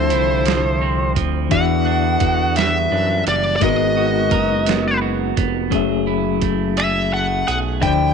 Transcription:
Already playing: analog synth bass D2, reed electric piano D3 F3 D4 C5 E5, clean electric guitar D3 C4 E4, horn section F3 E4 A4, lead electric guitar C5
0.10 analog synth bass C2, clean electric guitar E4, closed hi-hat
0.46 clean electric guitar F3, snare, closed hi-hat
0.82 clean electric guitar C4
1.16 analog synth bass D2, clean electric guitar F3, kick, closed hi-hat
1.49 analog synth bass E2, horn section D3 B3 F#4, reed electric piano E3 D4 F#4, clean electric guitar E3, lead electric guitar F#5, kick, closed hi-hat
1.53 reed electric piano E4 D5
1.61 reed electric piano E5
1.86 clean electric guitar D4
2.20 analog synth bass E2, clean electric guitar F#4, kick, closed hi-hat
2.56 clean electric guitar G3, lead electric guitar E5, snare, closed hi-hat
2.92 analog synth bass F#2, clean electric guitar D4
3.26 analog synth bass F#1, clean electric guitar G3, lead electric guitar D5, closed hi-hat
3.56 lead electric guitar D5
3.60 analog synth bass G#1, horn section D#3 B3 F#4, reed electric piano G#3 D#4 F#4 A#4, clean electric guitar G#3, lead electric guitar D#5, kick, closed hi-hat
3.66 reed electric piano B3
3.97 clean electric guitar F#4
4.31 analog synth bass F#1, clean electric guitar A#4, kick, closed hi-hat
4.66 clean electric guitar B3, snare, closed hi-hat
5.02 clean electric guitar F#4
5.37 analog synth bass F1, clean electric guitar B3, kick, closed hi-hat
5.70 analog synth bass F#1, reed electric piano F#3 C#4 G#4, clean electric guitar F#3 G#4, kick, closed hi-hat
5.74 reed electric piano A3 E5
6.07 clean electric guitar E4
6.42 clean electric guitar A3, kick, closed hi-hat
6.77 clean electric guitar G#4, lead electric guitar E5, finger snap, closed hi-hat
7.12 clean electric guitar A3, lead electric guitar F#5
7.47 analog synth bass B1, clean electric guitar G#4, lead electric guitar F#5, closed hi-hat
7.81 analog synth bass D2, reed electric piano D3 F3 D4 C5, clean electric guitar D3 E4, lead electric guitar G5, kick, closed hi-hat
7.86 reed electric piano D5

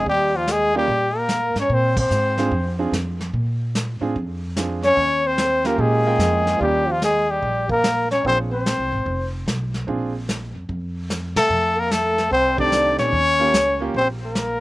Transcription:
0.06 upright bass D#2, trombone G3, trumpet G4, brush sweep, kick
0.36 trombone F3, trumpet F4
0.47 trombone G#3, snare, hi-hat pedal
0.52 trumpet G#4
0.75 trombone G3, grand piano A#3 C#4 F4 G4, trumpet G4
0.87 upright bass A#2, brush sweep, kick
1.17 trombone A#3, trumpet A#4
1.29 snare, hi-hat pedal
1.55 upright bass G#2, snare
1.60 trombone C#4, trumpet C#5
1.69 upright bass A#2, trombone C4, brush sweep, kick
1.74 trumpet C5
1.97 trombone C4, trumpet C5, kick, ride
2.11 upright bass G#2, hi-hat pedal
2.38 grand piano C4 D4 F4 G#4, snare
2.51 upright bass F2, brush sweep, kick
2.79 grand piano C4 D4 F4 G#4
2.92 upright bass F2, snare, hi-hat pedal
3.21 snare
3.33 upright bass A#2, brush sweep, kick
3.75 snare, hi-hat pedal
4.01 upright bass A2, grand piano C4 D4 F4 G#4
4.16 upright bass F2, brush sweep, kick
4.56 grand piano C4 D4 F4 G#4, snare, hi-hat pedal
4.83 trombone C#4, trumpet C#5, snare
4.97 upright bass D#2, brush sweep, kick
5.26 trombone C4, trumpet C5
5.38 snare, hi-hat pedal
5.65 grand piano A#3 C#4 F4 G4, trombone A#3, trumpet A#4, snare
5.78 upright bass A#2, trombone G#3, trumpet G#4, brush sweep, kick
6.06 grand piano A#3 C#4 F4 G5
6.18 upright bass F2, snare, hi-hat pedal
6.47 snare
6.57 upright bass D#2, trombone F3 G3, trumpet F4, kick
6.61 grand piano A#3 C#4 F4 G4, trumpet G4, brush sweep
6.88 trombone F3, trumpet F4
7.02 trombone G#3, trumpet G#4, snare, hi-hat pedal
7.30 trombone G3, trumpet G4
7.42 upright bass A#1, brush sweep, kick
7.69 trombone A#3, trumpet A#4, kick
7.84 snare, hi-hat pedal
8.11 trombone C#4, trumpet C#5, snare
8.24 upright bass A#1, grand piano C4 D4 F4 G#4, trombone C4, trumpet C5, brush sweep, kick
8.51 trombone C4, trumpet C5
8.66 snare, hi-hat pedal
8.79 upright bass C2
8.92 upright bass G#1
9.06 upright bass F1, brush sweep, kick
9.46 upright bass B1, snare, hi-hat pedal
9.74 snare
9.87 upright bass A#1, grand piano C4 D4 F4 G#4, brush sweep, kick
10.29 snare, hi-hat pedal
10.55 upright bass F2
10.69 upright bass F2, brush sweep, kick
11.10 snare, hi-hat pedal
11.36 upright bass C3, trombone A3, trumpet A4, snare, ride
11.49 upright bass F2, brush sweep
11.77 trombone A#3, trumpet A#4
11.91 trombone A3, trumpet A4, snare, hi-hat pedal
12.18 snare
12.31 upright bass C2, trombone C4, trumpet C5, brush sweep, kick
12.57 grand piano D#3 A3 C4 G4, trombone D4, trumpet D5, kick
12.72 snare, hi-hat pedal
12.99 upright bass A#2, trombone C#4, trumpet C#5, snare
13.12 upright bass D#2, brush sweep, kick
13.39 grand piano A#3 C#4 F4 G4
13.53 upright bass C#2, snare, hi-hat pedal
13.80 grand piano A#3 C#4 F4 G4
13.94 upright bass A#1, trombone C4, trumpet C5, brush sweep, kick
14.25 trombone A#3, trumpet A#4
14.35 snare, hi-hat pedal

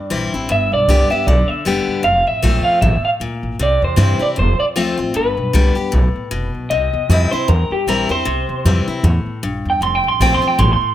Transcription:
Already playing: steel-string acoustic guitar G2, clean electric guitar D5
0.10 upright bass A#1, steel-string acoustic guitar E3 G3 C4 E4
0.34 upright bass A1, steel-string acoustic guitar C4 E4
0.49 upright bass G1, steel-string acoustic guitar G2, clean electric guitar E5
0.72 upright bass B1, clean electric guitar D5
0.88 upright bass C2, steel-string acoustic guitar D3 G3 B3 G4
1.10 steel-string acoustic guitar B3 G4, clean electric guitar E5
1.26 upright bass B1, steel-string acoustic guitar D3, clean electric guitar D5
1.48 clean electric guitar E5, muted upright bass stroke
1.65 upright bass F1, steel-string acoustic guitar D3 G3 B3 G4
1.88 upright bass G1
2.03 upright bass F1, steel-string acoustic guitar F2, clean electric guitar F5
2.27 upright bass A1, clean electric guitar E5
2.42 upright bass A#1, steel-string acoustic guitar F3 A3 C4 F4
2.64 clean electric guitar F5, muted upright bass stroke
2.81 upright bass A1, steel-string acoustic guitar A2, clean electric guitar E5
3.04 clean electric guitar F5, muted upright bass stroke
3.20 upright bass D2, steel-string acoustic guitar A#2
3.43 upright bass A1
3.59 upright bass C2, steel-string acoustic guitar C3, clean electric guitar D5
3.82 upright bass E2, clean electric guitar C5
3.96 upright bass G2, steel-string acoustic guitar E3 G3 C4 E4
4.19 steel-string acoustic guitar C4 E4, clean electric guitar D5, muted upright bass stroke
4.36 upright bass F1, steel-string acoustic guitar F2, clean electric guitar C5
4.60 clean electric guitar D5, muted upright bass stroke
4.76 upright bass D2, steel-string acoustic guitar F3 A3 C4 F4, clean electric guitar E5
4.97 upright bass A1, steel-string acoustic guitar C4 F4
5.14 upright bass G1, steel-string acoustic guitar G2, clean electric guitar B4
5.37 upright bass B1
5.53 upright bass C2, steel-string acoustic guitar D3 G3 B3 G4
5.75 steel-string acoustic guitar B3 G4, muted upright bass stroke
5.92 upright bass B1, steel-string acoustic guitar A2
6.16 muted upright bass stroke
6.31 upright bass F1, steel-string acoustic guitar B2
6.54 upright bass B1
6.70 upright bass C2, steel-string acoustic guitar C3, clean electric guitar D#5
6.93 upright bass E2
7.09 upright bass F2, steel-string acoustic guitar E3 G3 C4 E4
7.31 steel-string acoustic guitar C4 E4, clean electric guitar C5, muted upright bass stroke
7.48 upright bass E2, steel-string acoustic guitar G2, clean electric guitar A#4
7.71 clean electric guitar G4, muted upright bass stroke
7.87 upright bass A#1, steel-string acoustic guitar E3 G3 C4 E4, clean electric guitar A#4
8.09 upright bass E2, steel-string acoustic guitar C4 E4, clean electric guitar C5
8.25 upright bass C2, steel-string acoustic guitar C3
8.49 upright bass E2
8.65 upright bass F2, steel-string acoustic guitar E3 G3 C4 E4
8.88 steel-string acoustic guitar C4 E4, muted upright bass stroke
9.03 upright bass E2, steel-string acoustic guitar A2
9.26 muted upright bass stroke
9.43 upright bass A#1, steel-string acoustic guitar G2
9.65 upright bass E2
9.70 clean electric guitar G5
9.81 upright bass F1, steel-string acoustic guitar F2, clean electric guitar C6
9.95 clean electric guitar G5
10.04 upright bass A1
10.08 clean electric guitar C6
10.20 upright bass A#1, steel-string acoustic guitar F3 A3 C4 F4, clean electric guitar G5
10.35 clean electric guitar C6
10.42 steel-string acoustic guitar C4 F4, muted upright bass stroke
10.48 clean electric guitar G5
10.59 upright bass A1, steel-string acoustic guitar A2, clean electric guitar C6
10.73 clean electric guitar C6
10.81 muted upright bass stroke

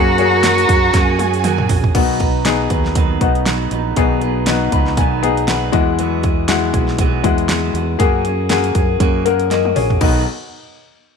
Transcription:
Already playing: fingered electric bass F#2, steel-string acoustic guitar F#3 A#3 C#4 F#4 G#4, upright piano A#3 C#4 F#4 G#4, cello F#4, violin section A#4 A#5
0.18 upright piano A#3 C#4 F#4 G#4, steel-string acoustic guitar C#4 F#4 G#4, open hi-hat
0.43 steel-string acoustic guitar F#3 A#3 C#4 F#4 G#4, snare, open hi-hat
0.58 open hi-hat
0.68 fingered electric bass F#2, steel-string acoustic guitar C#4 G#4, kick, open hi-hat
0.94 fingered electric bass F#2, steel-string acoustic guitar A#3 C#4 F#4 G#4, violin section G#4 G#5, kick, snare, open hi-hat
1.18 steel-string acoustic guitar C#4 F#4 G#4, open hi-hat, high tom
1.34 open hi-hat
1.44 steel-string acoustic guitar F#3 A#3 C#4 F#4 G#4, open hi-hat, mid tom
1.58 mid tom
1.69 fingered electric bass A#1, steel-string acoustic guitar C#4 F#4 G#4, floor tom, open hi-hat
1.84 floor tom
1.94 fingered electric bass B1, steel-string acoustic guitar B2 D#3 F#3 B3 D#4 B4, upright piano B2 B3 D#4 F#4, kick, closed hi-hat, crash
2.19 steel-string acoustic guitar F#3 B3 D#4 B4, kick, closed hi-hat
2.44 steel-string acoustic guitar F#3 B3 D#4 B4, upright piano B3 D#4 G#4, snare, closed hi-hat
2.70 fingered electric bass D#2, steel-string acoustic guitar F#3 B3 D#4 B4, kick, closed hi-hat
2.85 snare
2.95 steel-string acoustic guitar B2 D#3 F#3 B3 D#4 B4, kick, closed hi-hat
3.20 fingered electric bass B1, steel-string acoustic guitar F#3 B3 D#4 B4, upright piano B3 D#4 F#4, kick, closed hi-hat
3.35 closed hi-hat
3.46 steel-string acoustic guitar F#3 B3 D#4 B4, snare, closed hi-hat
3.71 fingered electric bass A#1, steel-string acoustic guitar F#3 B3 D#4 B4, closed hi-hat
3.96 fingered electric bass B1, steel-string acoustic guitar B2 D#3 F#3 B3 D#4 B4, upright piano B2 B3 D#4 G#4, kick, closed hi-hat
4.21 steel-string acoustic guitar F#3 B3 D#4 B4, closed hi-hat
4.46 steel-string acoustic guitar F#3 B3 D#4 B4, upright piano B3 D#4 F#4, snare, closed hi-hat
4.72 fingered electric bass C#2, steel-string acoustic guitar F#3 B3 D#4 B4, upright piano B5, kick, closed hi-hat
4.86 snare
4.97 fingered electric bass B1, steel-string acoustic guitar B2 D#3 F#3 B3 D#4 B4, upright piano G#5, kick, closed hi-hat
5.23 steel-string acoustic guitar F#3 B3 D#4 B4, upright piano B3 D#4 G#4, closed hi-hat
5.37 closed hi-hat
5.47 steel-string acoustic guitar F#3 B3 D#4 B4, upright piano F#5, snare, closed hi-hat
5.72 fingered electric bass E2, upright piano E3 G#3 E4 F#4 D#5, steel-string acoustic guitar B3 F#4 G#4, kick, closed hi-hat
5.99 steel-string acoustic guitar E3 F#3 B3 F#4 G#4, closed hi-hat
6.23 steel-string acoustic guitar B3 F#4 G#4, kick, closed hi-hat
6.48 steel-string acoustic guitar F#3 B3 F#4 G#4, upright piano G#3 E4 F#4, snare, closed hi-hat
6.74 fingered electric bass B1, steel-string acoustic guitar B3 F#4 G#4, kick, closed hi-hat
6.88 snare
6.98 steel-string acoustic guitar E3 F#3 B3 F#4 G#4, kick, closed hi-hat
7.23 fingered electric bass E2, upright piano G#3 E4 F#4, steel-string acoustic guitar B3 F#4 G#4, kick, closed hi-hat
7.38 closed hi-hat
7.49 steel-string acoustic guitar F#3 B3 F#4 G#4, snare, closed hi-hat
7.74 fingered electric bass E2, steel-string acoustic guitar B3 F#4 G#4, closed hi-hat
7.98 fingered electric bass F#2, steel-string acoustic guitar F#3 A#3 C#4 F#4 G#4, upright piano A#3 F#4 G#4, kick, closed hi-hat
8.25 steel-string acoustic guitar C#4 F#4 G#4, closed hi-hat
8.50 upright piano A#3 F#4 G#4, steel-string acoustic guitar A#3 C#4 F#4 G#4, snare, closed hi-hat
8.64 closed hi-hat
8.75 fingered electric bass F#2, steel-string acoustic guitar C#4 F#4 G#4, kick, closed hi-hat
9.00 fingered electric bass F#2, steel-string acoustic guitar F#3 A#3 C#4 F#4 G#4, kick, closed hi-hat
9.25 upright piano A#3 F#4 A#4, steel-string acoustic guitar C#4 F#4 G#4, closed hi-hat
9.39 closed hi-hat
9.50 steel-string acoustic guitar A#3 C#4 F#4 G#4, upright piano A#4 D#5, snare, closed hi-hat
9.65 high tom
9.76 fingered electric bass A#1, steel-string acoustic guitar C#4 F#4 G#4, upright piano G#4 C#5, mid tom, open hi-hat
9.90 floor tom
10.01 upright piano B1 B3 D#4 F#4, fingered electric bass B1, steel-string acoustic guitar B2 D#3 F#3 B3 D#4 B4, kick, crash

